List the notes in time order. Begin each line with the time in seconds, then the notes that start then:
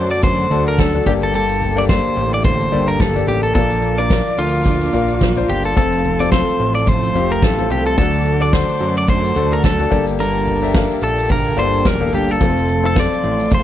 Already playing: F#2 D3 F#3 A3 D4 F#4 A4 C5 F#5 A5 D6
0.11 D5, shaker
0.22 D3 F#3 A3 D4 F#4 C5, kick, closed hi-hat, shaker
0.39 shaker
0.50 D2 D4 F#4 A4, closed hi-hat, floor tom, shaker
0.66 A#4, shaker
0.77 F#3 A3 D4 F#4 A4, kick, snare, closed hi-hat, shaker
0.93 D4 F#4 A4, floor tom, shaker
1.06 G1 G2 G3 A#3 D4 G4 A4 D5 G5, kick, closed hi-hat, floor tom
1.21 A4, closed hi-hat, shaker
1.34 G2 D3 G3 A#3 D4 A4, closed hi-hat, shaker
1.49 shaker
1.61 closed hi-hat, floor tom
1.76 A#3 D4 G4 A4 D5, snare, shaker
1.88 G3 A#3 D4 G4 A4 C5 D5, kick, snare, closed hi-hat, shaker
2.04 shaker
2.16 A1, closed hi-hat
2.31 D5, shaker
2.44 G2 D3 G3 A#3 D4 A4 C5, kick, closed hi-hat, shaker
2.60 shaker
2.72 G1 A#3 D4 G4 A4 D5, closed hi-hat, floor tom, shaker
2.87 A#4, shaker
2.99 G1 G3 A#3 D4 A4, kick, snare, closed hi-hat, shaker
3.15 A#3 D4 G4 A4 D5, floor tom, shaker
3.26 A1 G3 A#3 D4 G4 A4, closed hi-hat, floor tom
3.42 A4, shaker
3.54 A#1 A#2 F3 A#3 D4 F4 A4 A#4 F5 D6, kick, closed hi-hat, shaker
3.71 shaker
3.82 closed hi-hat
3.98 D4 F4 A#4 D5, shaker
4.10 F3 A#3 D4 F4 A#4, kick, snare, closed hi-hat, shaker
4.25 shaker
4.37 D2 F4, closed hi-hat
4.53 shaker
4.64 A#2 F3 A#3 D4 A#4, kick, closed hi-hat, shaker
4.81 shaker
4.93 A#1 D4 F4 A#4, closed hi-hat, floor tom, shaker
5.08 shaker
5.20 F3 A#3 D4 A#4, kick, snare, closed hi-hat, shaker
5.35 D4 F4 C5, floor tom, shaker
5.48 G1 A#3 D4 G4 A#4, closed hi-hat, floor tom
5.63 A4, closed hi-hat, shaker
5.76 F1 F2 C3 F3 A3 C4 F4 A4 A5 C6, kick, closed hi-hat, shaker
5.92 shaker
6.03 F3 A3 C4 A4, closed hi-hat, floor tom
6.20 C4 F4 A4 D5, snare, shaker
6.31 F3 A3 C4 F4 A4 C5, kick, snare, closed hi-hat, shaker
6.47 shaker
6.59 A1, closed hi-hat
6.74 D5, shaker
6.86 F2 C3 F3 A3 C4 A4 C5, kick, closed hi-hat, shaker
7.03 shaker
7.15 F1 C4 F4 G4, closed hi-hat, floor tom, shaker
7.30 A#4, shaker
7.42 A1 F3 A3 C4 A4, kick, snare, closed hi-hat, shaker
7.58 C4 F4 A4, floor tom, shaker
7.70 C2 F3 A3 C4 G4 A4, closed hi-hat, floor tom
7.85 A4, closed hi-hat, shaker
7.97 D2 D3 F#3 A3 D4 F#4 A4 F#5 D6, kick, closed hi-hat, shaker
8.13 shaker
8.25 closed hi-hat
8.40 D4 F#4 A4 D5, shaker
8.52 F#3 A3 D4 F#4 C5, kick, snare, closed hi-hat, shaker
8.68 closed hi-hat, shaker
8.80 F#2, closed hi-hat
8.96 D5, shaker
9.07 D3 F#3 A3 D4 F#4 C5, kick, closed hi-hat, shaker
9.24 shaker
9.35 D2 D4 F#4 A4, closed hi-hat, floor tom, shaker
9.52 A#4, shaker
9.63 F#3 A3 D4 F#4 A4, kick, snare, closed hi-hat, shaker
9.79 D4 F#4 A4, floor tom, shaker
9.91 G1 G2 G3 A#3 D4 G4 A4 D5 G5, kick, closed hi-hat, floor tom
10.07 closed hi-hat, shaker
10.19 G2 D3 G3 A#3 D4 A4 A#4, closed hi-hat, shaker
10.36 shaker
10.47 closed hi-hat, floor tom
10.62 A#3 D4 G4 A4 E5, snare, shaker
10.74 G3 A#3 D4 G4 A4 F5, kick, snare, closed hi-hat, shaker
10.90 shaker
11.02 A#1 A4, closed hi-hat
11.18 shaker
11.29 G2 D3 G3 A#3 D4 A4 A#4, kick, closed hi-hat, shaker
11.46 shaker
11.57 G1 A#3 D4 G4 A4 C5 D5, closed hi-hat, floor tom, shaker
11.74 shaker
11.85 E1 G3 A#3 D4 A4 A#4, kick, snare, closed hi-hat, shaker
12.00 A#3 D4 G4 A4 F5, floor tom, shaker
12.12 G1 G3 A#3 D4 G4 A4, closed hi-hat, floor tom
12.29 A4, shaker
12.40 F1 F2 C3 F3 A3 C4 F4 A4 F5 C6, kick, closed hi-hat, shaker
12.57 shaker
12.68 closed hi-hat
12.83 C4 F4 A4, shaker
12.95 F3 A3 C4 F4 A4, kick, snare, closed hi-hat, shaker
13.00 D5
13.12 closed hi-hat, shaker
13.23 A1, closed hi-hat
13.39 shaker
13.51 F2 C3 F3 A3 C4 A4 C5, kick, closed hi-hat, shaker